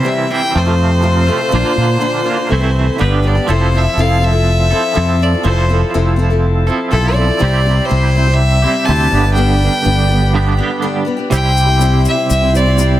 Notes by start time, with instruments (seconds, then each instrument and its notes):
Already playing: clean electric guitar C3 E3 G3 C4 E4
0.03 steel-string acoustic guitar C3 G3 C4 E4 G4
0.08 fiddle E5
0.29 clean electric guitar C3 E3, steel-string acoustic guitar G3 C4 E4 G4, fiddle G5
0.42 steel-string acoustic guitar C4 E4 G4
0.52 clean electric guitar F2 C3, fingered electric bass F2, steel-string acoustic guitar F3 A3 C4 F4
0.57 fiddle C5
0.66 steel-string acoustic guitar F3 A3 C4 F4
1.02 steel-string acoustic guitar F2 C3 F3 A3 C4 F4
1.27 clean electric guitar F2 C3, steel-string acoustic guitar F3 A3 C4 F4
1.39 steel-string acoustic guitar F3 A3 C4 F4
1.51 fingered electric bass A#1, steel-string acoustic guitar A#2 F3 A#3 D4 F4, clean electric guitar D3
1.75 fingered electric bass A#2, steel-string acoustic guitar F3 A#3 D4 F4
2.00 steel-string acoustic guitar A#2 F3 A#3 D4 F4
2.23 steel-string acoustic guitar F3 A#3 D4 F4
2.27 clean electric guitar A#2 D3
2.37 steel-string acoustic guitar A#3 D4 F4
2.47 clean electric guitar C3, steel-string acoustic guitar E3 A3 C4 A4
2.51 fingered electric bass C2, clean electric guitar E3 E4
2.60 steel-string acoustic guitar A3 C4 A4
2.98 fingered electric bass G1, steel-string acoustic guitar G2 D3 G3 B3 D4 G4, fiddle B4
3.22 steel-string acoustic guitar G3 B3 D4 G4
3.27 fiddle D5
3.35 steel-string acoustic guitar G3 B3 D4 G4
3.48 fingered electric bass F1, steel-string acoustic guitar F2 C3 F3 C4 E4 A4, tonewheel organ C5 E5 A5, fiddle C5
3.72 steel-string acoustic guitar F3 C4 E4 A4
3.77 fiddle E5
3.97 fingered electric bass F1, steel-string acoustic guitar F2 C3 F3 C4 E4 A4, fiddle F5
4.21 steel-string acoustic guitar F3 C4 E4 A4, fiddle E5
4.32 steel-string acoustic guitar F3 C4 E4 A4
4.71 steel-string acoustic guitar F3 C4 E4 A4
4.94 steel-string acoustic guitar F2 C3 F3 C4 E4 A4, fingered electric bass F2
5.19 steel-string acoustic guitar F3 C4 E4 A4, fiddle D5
5.33 steel-string acoustic guitar F3 C4 E4 A4
5.43 fingered electric bass F1, steel-string acoustic guitar F2 C3 F3 C4 E4 A4, fiddle C5
5.69 steel-string acoustic guitar F3 C4 E4 A4
5.94 fingered electric bass F1, steel-string acoustic guitar F2 C3 F3 C4 E4 A4
6.16 steel-string acoustic guitar F3 C4 E4 A4
6.30 steel-string acoustic guitar F3 C4 E4 A4
6.67 steel-string acoustic guitar F3 C4 E4 A4
6.91 fingered electric bass B1, steel-string acoustic guitar F2 C3 F3 C4 E4 A4, fiddle A4
7.14 steel-string acoustic guitar F3 C4 E4 A4, fiddle D5
7.28 steel-string acoustic guitar F3 C4 E4 A4
7.39 fingered electric bass C2, steel-string acoustic guitar C3 G3 C4 E4 G4, tonewheel organ G4 C6
7.66 steel-string acoustic guitar G3 C4 E4 G4
7.86 steel-string acoustic guitar C3 G3, fiddle C5
7.90 fingered electric bass C2, steel-string acoustic guitar C4 E4 G4
8.15 steel-string acoustic guitar G3 C4 E4 G4
8.27 steel-string acoustic guitar C4 E4 G4
8.34 fiddle E5
8.62 clean electric guitar C3 G4, steel-string acoustic guitar G3 C4 E4
8.67 steel-string acoustic guitar G4
8.85 fingered electric bass D2, steel-string acoustic guitar C3 G3 C4 E4 G4, fiddle A5
9.10 fingered electric bass G1, clean electric guitar G2 D3, steel-string acoustic guitar G3 B3 D4, tonewheel organ B4 D5 B5
9.14 steel-string acoustic guitar G4
9.24 steel-string acoustic guitar G3 B3 D4 G4
9.34 steel-string acoustic guitar G2 D3 G3 B3, fiddle G5
9.38 steel-string acoustic guitar D4 G4
9.62 steel-string acoustic guitar G3 B3 D4 G4
9.84 fingered electric bass G1, steel-string acoustic guitar G2 D3 G3 B3 D4 G4
10.09 steel-string acoustic guitar G3 B3 D4 G4
10.22 steel-string acoustic guitar G3 B3 D4 G4
10.34 clean electric guitar G2 D3 G3 B3 D4 G4
10.57 clean electric guitar D3, steel-string acoustic guitar G3 B3 D4 G4
10.61 clean electric guitar G2
10.82 steel-string acoustic guitar G2 D3 G3 B3 D4 G4
11.05 steel-string acoustic guitar G3 B3 D4 G4
11.17 steel-string acoustic guitar G3 B3 D4 G4
11.31 fingered electric bass C2, steel-string acoustic guitar C3 G3 C4 E4 G4, reed electric piano E4 G4 C5, tonewheel organ G4 C5 E5 C6, shaker
11.35 fiddle G5
11.57 shaker
11.67 steel-string acoustic guitar C4 E4 G4
11.79 steel-string acoustic guitar C3 G3 C4 E4 G4, shaker
12.05 fiddle E5, shaker
12.15 steel-string acoustic guitar C4 E4 G4
12.30 fingered electric bass C2, fiddle E5, shaker
12.42 steel-string acoustic guitar C4 E4 G4
12.53 steel-string acoustic guitar G3 C4 E4 G4, reed electric piano E4 G4 C5, fiddle D5, shaker
12.66 steel-string acoustic guitar C4 E4 G4
12.77 steel-string acoustic guitar C3 G3 C4 E4 G4, shaker